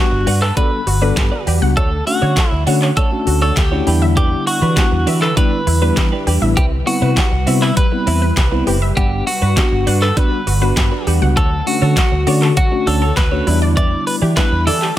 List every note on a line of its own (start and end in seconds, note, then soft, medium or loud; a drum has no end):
0.00 1.75 D3 medium
0.00 0.27 G3 medium
0.00 1.75 G3 medium
0.00 0.28 B3 medium
0.00 1.75 B3 medium
0.00 0.28 D4 medium
0.00 0.28 F#4 medium
0.00 0.42 F#4 medium
0.00 3.83 F#5 medium
0.12 0.23 G1 medium
0.12 muted clean electric guitar stroke soft
0.27 0.50 G2 loud
0.27 0.46 F#4 medium
0.27 0.41 B4 medium
0.27 0.40 D5 loud
0.27 0.39 F#5 medium
0.27 open hi-hat medium
0.42 0.57 A4 loud
0.42 0.54 B4 medium
0.42 muted clean electric guitar stroke soft
0.42 clap medium
0.56 0.80 G3 medium
0.56 0.69 G3 medium
0.56 0.80 B3 medium
0.56 0.80 D4 medium
0.56 0.76 F#4 medium
0.56 0.80 A4 medium
0.56 1.43 B4 medium
0.56 0.71 B4 medium
0.56 0.70 D5 loud
0.56 kick loud
0.56 closed hi-hat medium
0.72 muted clean electric guitar stroke soft
0.87 1.10 G1 medium
0.87 0.99 F#4 medium
0.87 muted clean electric guitar stroke soft
0.87 open hi-hat medium
1.02 1.32 G3 medium
1.02 1.32 B3 medium
1.02 1.33 D4 medium
1.02 1.15 F#4 medium
1.02 1.33 A4 medium
1.02 1.14 B4 medium
1.02 1.16 B4 medium
1.02 1.16 D5 medium
1.17 1.29 G2 loud
1.17 1.29 G4 medium
1.17 kick loud
1.17 snare medium
1.17 clap loud
1.17 closed hi-hat medium
1.32 1.45 F#4 medium
1.32 1.46 B4 medium
1.32 1.47 D5 medium
1.47 1.59 E2 loud
1.47 1.66 F#4 medium
1.47 1.59 G4 medium
1.47 1.61 B4 medium
1.47 1.61 D5 medium
1.47 open hi-hat medium
1.62 1.74 C#2 loud
1.62 1.77 G3 medium
1.62 1.77 B3 medium
1.62 1.77 D4 medium
1.62 1.77 F#4 medium
1.62 1.74 F#5 medium
1.62 muted clean electric guitar stroke soft
1.77 6.53 D3 medium
1.77 1.89 A3 loud
1.77 3.85 A3 medium
1.77 1.96 D4 medium
1.77 1.92 F#4 medium
1.77 2.06 A4 loud
1.77 3.85 C#5 medium
1.77 1.91 C#5 loud
1.77 kick loud
1.77 closed hi-hat medium
1.92 muted clean electric guitar stroke soft
2.07 2.37 A3 medium
2.07 2.37 C#4 medium
2.07 2.38 D4 medium
2.07 2.50 F#4 loud
2.07 2.38 F#4 medium
2.07 muted clean electric guitar stroke soft
2.07 open hi-hat medium
2.22 2.34 D3 medium
2.22 2.37 D4 medium
2.22 2.37 F#4 medium
2.22 2.37 C#5 medium
2.22 2.34 C#5 medium
2.37 2.49 A4 loud
2.37 kick loud
2.37 snare medium
2.37 clap loud
2.37 closed hi-hat medium
2.50 2.64 D2 loud
2.50 2.63 E4 loud
2.50 muted clean electric guitar stroke soft
2.67 2.90 D3 loud
2.67 2.90 A3 medium
2.67 2.90 C#4 medium
2.67 2.86 D4 medium
2.67 2.90 D4 medium
2.67 2.90 F#4 loud
2.67 2.81 F#4 loud
2.67 2.80 C#5 medium
2.67 2.79 F#5 loud
2.67 open hi-hat medium
2.82 2.94 C#5 medium
2.82 muted clean electric guitar stroke medium
2.82 clap medium
2.97 3.09 A3 medium
2.97 3.16 D4 medium
2.97 3.11 F#4 loud
2.97 3.41 A4 medium
2.97 3.11 C#5 loud
2.97 kick loud
2.97 closed hi-hat medium
3.12 3.42 A3 medium
3.12 3.42 C#4 medium
3.12 3.42 D4 medium
3.12 3.43 F#4 medium
3.12 muted clean electric guitar stroke soft
3.27 3.50 D2 loud
3.27 3.39 F#4 medium
3.27 muted clean electric guitar stroke soft
3.27 open hi-hat medium
3.42 3.56 D4 soft
3.42 3.56 F#4 medium
3.42 3.57 A4 medium
3.42 3.57 C#5 medium
3.42 3.54 C#5 medium
3.57 3.80 D2 medium
3.57 4.02 G4 medium
3.57 3.69 A4 medium
3.57 kick loud
3.57 snare loud
3.57 clap loud
3.57 closed hi-hat medium
3.71 3.87 A3 medium
3.71 3.87 C#4 medium
3.71 3.86 D4 medium
3.71 3.85 D4 soft
3.71 3.86 E4 medium
3.71 3.87 F#4 medium
3.71 3.87 C#5 medium
3.87 4.33 E2 loud
3.87 4.59 G3 medium
3.87 11.33 G3 medium
3.87 4.59 B3 medium
3.87 4.06 D4 medium
3.87 4.59 D4 medium
3.87 8.93 E4 loud
3.87 4.59 E4 medium
3.87 3.99 G4 medium
3.87 4.01 G4 medium
3.87 11.33 B4 medium
3.87 4.00 B4 loud
3.87 open hi-hat medium
4.02 4.14 E5 medium
4.02 muted clean electric guitar stroke soft
4.16 4.29 G3 loud
4.16 4.36 D4 medium
4.16 4.47 G4 medium
4.16 4.31 G4 medium
4.16 4.30 B4 loud
4.16 kick loud
4.16 closed hi-hat medium
4.32 muted clean electric guitar stroke medium
4.47 5.22 F#4 medium
4.47 muted clean electric guitar stroke medium
4.47 open hi-hat medium
4.62 4.73 E3 loud
4.62 4.77 D4 medium
4.62 4.77 G4 medium
4.62 4.77 B4 medium
4.62 4.74 B4 medium
4.77 5.07 G3 medium
4.77 5.07 B3 medium
4.77 5.07 D4 medium
4.77 5.08 E4 medium
4.77 4.89 G4 loud
4.77 kick loud
4.77 snare medium
4.77 clap loud
4.77 closed hi-hat medium
4.92 5.03 E2 medium
4.92 muted clean electric guitar stroke soft
5.07 5.30 E3 loud
5.07 5.26 D4 medium
5.07 5.21 G4 medium
5.07 5.20 B4 medium
5.07 5.19 E5 loud
5.07 open hi-hat medium
5.22 5.37 A4 loud
5.22 5.34 B4 medium
5.22 muted clean electric guitar stroke soft
5.22 clap medium
5.37 5.60 G3 medium
5.37 5.49 G3 medium
5.37 5.60 B3 medium
5.37 5.56 D4 loud
5.37 5.60 D4 medium
5.37 5.60 E4 loud
5.37 5.52 G4 loud
5.37 6.23 B4 loud
5.37 5.51 B4 loud
5.37 kick loud
5.37 closed hi-hat medium
5.52 muted clean electric guitar stroke soft
5.67 5.90 E2 loud
5.67 5.79 E4 medium
5.67 muted clean electric guitar stroke soft
5.67 open hi-hat medium
5.82 6.12 G3 medium
5.82 6.13 B3 medium
5.82 6.13 D4 medium
5.82 5.96 D4 medium
5.82 6.13 E4 medium
5.82 5.96 G4 medium
5.82 5.97 B4 medium
5.82 5.94 B4 medium
5.97 6.09 E3 loud
5.97 6.09 G4 medium
5.97 muted clean electric guitar stroke soft
5.97 kick loud
5.97 snare loud
5.97 clap loud
5.97 closed hi-hat medium
6.12 6.26 D4 soft
6.12 6.26 G4 medium
6.12 6.27 B4 medium
6.27 6.38 E2 medium
6.27 6.46 D4 medium
6.27 6.39 G4 medium
6.27 6.42 G4 medium
6.27 6.41 B4 loud
6.27 open hi-hat medium
6.42 6.53 A1 loud
6.42 6.57 G3 medium
6.42 6.57 B3 medium
6.42 6.57 D4 medium
6.42 6.57 E4 medium
6.42 6.54 E5 medium
6.42 muted clean electric guitar stroke soft
6.57 8.95 C3 medium
6.57 6.69 G3 loud
6.57 6.76 C4 medium
6.57 6.72 E4 medium
6.57 6.65 G4 medium
6.57 6.71 B4 medium
6.57 kick loud
6.57 closed hi-hat medium
6.72 muted clean electric guitar stroke medium
6.87 7.17 G3 medium
6.87 7.17 B3 medium
6.87 7.17 C4 medium
6.87 7.18 E4 medium
6.87 7.64 F#4 medium
6.87 muted clean electric guitar stroke soft
6.87 open hi-hat medium
7.02 7.13 C3 medium
7.02 7.17 C4 medium
7.02 7.17 E4 medium
7.02 7.17 B4 medium
7.02 7.14 B4 medium
7.17 7.29 G4 loud
7.17 kick loud
7.17 snare medium
7.17 clap loud
7.17 closed hi-hat medium
7.32 7.43 C2 loud
7.32 muted clean electric guitar stroke medium
7.47 7.70 C3 loud
7.47 7.70 G3 medium
7.47 7.70 B3 medium
7.47 7.66 C4 medium
7.47 7.70 C4 medium
7.47 7.70 E4 medium
7.47 7.61 E4 medium
7.47 7.61 B4 loud
7.47 7.59 E5 medium
7.47 open hi-hat medium
7.62 7.77 E4 medium
7.62 7.74 B4 medium
7.62 muted clean electric guitar stroke soft
7.62 clap medium
7.77 7.89 G3 medium
7.77 8.63 B4 loud
7.77 muted clean electric guitar stroke soft
7.77 kick loud
7.77 closed hi-hat medium
7.92 8.22 G3 medium
7.92 8.22 B3 medium
7.92 8.23 C4 medium
7.92 8.23 E4 medium
7.92 muted clean electric guitar stroke medium
8.07 8.30 E2 loud
8.07 8.26 C4 medium
8.07 8.19 E4 medium
8.07 8.21 E4 medium
8.07 8.21 B4 medium
8.07 open hi-hat medium
8.22 8.34 B4 medium
8.22 muted clean electric guitar stroke soft
8.37 8.60 C2 medium
8.37 8.49 G4 medium
8.37 muted clean electric guitar stroke soft
8.37 kick loud
8.37 snare medium
8.37 clap loud
8.37 closed hi-hat medium
8.52 8.75 G3 medium
8.52 8.75 B3 medium
8.52 8.75 C4 medium
8.52 8.65 C4 medium
8.52 8.75 E4 loud
8.52 8.66 E4 medium
8.52 8.67 B4 medium
8.67 8.90 F#1 medium
8.67 8.86 C4 medium
8.67 8.81 E4 medium
8.67 8.79 G4 medium
8.67 8.81 B4 loud
8.67 open hi-hat medium
8.82 8.94 E5 medium
8.82 muted clean electric guitar stroke soft
8.97 9.20 G1 loud
8.97 14.99 D3 medium
8.97 9.27 G3 medium
8.97 9.09 G3 loud
8.97 9.28 B3 medium
8.97 9.16 D4 medium
8.97 9.28 D4 medium
8.97 9.11 F#4 loud
8.97 9.25 G4 medium
8.97 9.11 B4 loud
8.97 11.35 F#5 medium
8.97 9.28 F#5 medium
8.97 kick loud
8.97 closed hi-hat medium
9.12 muted clean electric guitar stroke soft
9.27 10.04 F#4 medium
9.27 muted clean electric guitar stroke soft
9.27 open hi-hat medium
9.42 9.54 G2 medium
9.42 9.57 D4 medium
9.42 9.57 F#4 medium
9.42 9.57 B4 medium
9.42 9.54 B4 medium
9.57 9.87 G3 medium
9.57 9.87 B3 medium
9.57 9.88 D4 medium
9.57 9.88 F#4 medium
9.57 9.69 G4 loud
9.57 kick loud
9.57 snare medium
9.57 clap loud
9.57 closed hi-hat medium
9.72 9.83 G1 loud
9.72 muted clean electric guitar stroke medium
9.87 10.10 G2 loud
9.87 10.06 D4 medium
9.87 10.02 F#4 medium
9.87 10.01 B4 medium
9.87 9.99 F#5 medium
9.87 open hi-hat medium
10.02 10.17 A4 medium
10.02 10.14 B4 medium
10.02 muted clean electric guitar stroke soft
10.02 clap medium
10.17 10.40 G3 medium
10.17 10.29 G3 medium
10.17 10.40 B3 medium
10.17 10.36 D4 medium
10.17 10.40 D4 medium
10.17 10.40 F#4 medium
10.17 10.32 F#4 medium
10.17 11.07 B4 loud
10.17 10.31 B4 medium
10.17 kick loud
10.17 closed hi-hat medium
10.32 muted clean electric guitar stroke soft
10.47 10.70 G1 medium
10.47 10.59 F#4 medium
10.47 muted clean electric guitar stroke soft
10.47 open hi-hat medium
10.62 10.92 G3 medium
10.62 10.92 B3 medium
10.62 10.93 D4 medium
10.62 10.75 D4 medium
10.62 10.93 F#4 medium
10.62 10.76 F#4 medium
10.62 10.77 B4 medium
10.62 10.74 B4 medium
10.77 10.89 G2 loud
10.77 10.89 G4 medium
10.77 kick loud
10.77 snare loud
10.77 clap loud
10.77 closed hi-hat medium
10.92 11.06 D4 medium
10.92 11.06 F#4 medium
10.92 11.07 B4 medium
11.07 11.19 E2 loud
11.07 11.26 D4 medium
11.07 11.22 F#4 loud
11.07 11.19 G4 medium
11.07 11.21 B4 loud
11.07 open hi-hat medium
11.22 11.33 C#2 medium
11.22 11.37 G3 medium
11.22 11.37 B3 medium
11.22 11.37 D4 medium
11.22 11.37 F#4 medium
11.22 11.34 F#5 medium
11.37 11.60 D2 loud
11.37 11.49 F#3 loud
11.37 13.45 A3 medium
11.37 11.56 F#4 medium
11.37 13.45 F#4 loud
11.37 11.65 A4 loud
11.37 11.52 A4 loud
11.37 13.45 C#5 medium
11.37 11.51 C#5 loud
11.37 kick loud
11.37 closed hi-hat medium
11.52 muted clean electric guitar stroke soft
11.67 11.97 A3 medium
11.67 11.97 C#4 medium
11.67 11.98 D4 medium
11.67 11.98 F#4 medium
11.67 12.56 F#4 loud
11.67 muted clean electric guitar stroke soft
11.67 open hi-hat medium
11.82 11.93 D3 medium
11.82 11.97 F#4 medium
11.82 11.94 A4 medium
11.82 11.97 A4 medium
11.82 11.97 C#5 medium
11.97 12.09 F#4 loud
11.97 kick loud
11.97 snare medium
11.97 clap loud
11.97 closed hi-hat medium
12.12 12.23 D2 loud
12.12 muted clean electric guitar stroke soft
12.27 12.50 D3 loud
12.27 12.50 A3 medium
12.27 12.50 C#4 medium
12.27 12.50 D4 medium
12.27 12.46 F#4 medium
12.27 12.50 F#4 loud
12.27 12.42 A4 medium
12.27 12.41 C#5 medium
12.27 12.39 D5 loud
12.27 open hi-hat medium
12.42 12.54 A4 medium
12.42 clap medium
12.57 12.69 F#3 medium
12.57 12.88 F#4 loud
12.57 muted clean electric guitar stroke soft
12.57 kick loud
12.57 closed hi-hat medium
12.72 13.02 A3 medium
12.72 13.03 C#4 medium
12.72 13.03 D4 medium
12.72 13.03 F#4 medium
12.72 muted clean electric guitar stroke medium
12.87 13.10 D2 medium
12.87 12.99 D4 medium
12.87 13.02 F#4 medium
12.87 13.15 A4 medium
12.87 13.01 A4 medium
12.87 13.01 C#5 medium
12.87 open hi-hat medium
13.02 13.16 F#4 medium
13.02 13.14 A4 medium
13.02 13.16 A4 medium
13.02 13.16 C#5 medium
13.17 13.40 D2 medium
13.17 13.29 F#4 medium
13.17 13.59 B4 loud
13.17 kick loud
13.17 snare medium
13.17 clap loud
13.17 closed hi-hat medium
13.32 13.47 A3 medium
13.32 13.47 C#4 medium
13.32 13.46 D4 medium
13.32 13.47 F#4 medium
13.32 13.46 F#4 medium
13.32 13.47 A4 medium
13.32 13.47 C#5 medium
13.47 13.93 E2 medium
13.47 14.19 G3 medium
13.47 14.99 G3 medium
13.47 14.99 B3 medium
13.47 14.19 B3 medium
13.47 14.19 D4 medium
13.47 13.66 E4 medium
13.47 13.59 E4 medium
13.47 14.99 E4 loud
13.47 14.19 E4 medium
13.47 13.62 G4 loud
13.47 13.61 D5 loud
13.47 open hi-hat medium
13.62 13.74 D5 medium
13.62 muted clean electric guitar stroke soft
13.77 13.89 E3 loud
13.77 13.96 E4 medium
13.77 13.92 G4 medium
13.77 14.07 D5 loud
13.77 13.91 D5 medium
13.77 kick loud
13.77 closed hi-hat medium
13.92 muted clean electric guitar stroke medium
14.07 14.15 B4 loud
14.07 muted clean electric guitar stroke soft
14.07 open hi-hat medium
14.22 14.34 E3 medium
14.22 14.37 E4 medium
14.22 14.34 G4 medium
14.22 14.37 G4 medium
14.22 14.37 D5 medium
14.37 14.68 G3 medium
14.37 14.68 B3 medium
14.37 14.68 D4 medium
14.37 14.49 E4 loud
14.37 14.68 E4 medium
14.37 14.65 B4 loud
14.37 kick loud
14.37 snare medium
14.37 clap loud
14.37 closed hi-hat medium
14.52 14.68 E2 loud
14.52 muted clean electric guitar stroke medium
14.67 14.90 E3 loud
14.67 14.86 E4 medium
14.67 14.81 G4 medium
14.67 14.96 A4 medium
14.67 14.79 D5 medium
14.67 14.81 D5 medium
14.67 open hi-hat medium
14.82 14.94 G4 medium
14.82 muted clean electric guitar stroke soft
14.82 clap medium